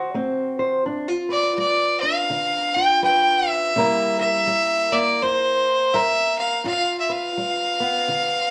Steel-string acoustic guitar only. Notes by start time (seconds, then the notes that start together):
Already playing: F#4 C5
0.14 A3 C4
0.59 C5
0.86 G2 D4
1.08 F4
1.29 B4
1.58 G3
2.03 D4
2.30 D3
2.76 F4
3.02 G3 B4
3.76 C3 G3 A#3 E4 A#4
4.21 A#4
4.47 G3
4.92 A#3
5.22 G2
5.94 G3 A#4
6.64 G2 F4
7.09 B4
7.37 G3
7.80 B3
8.08 D3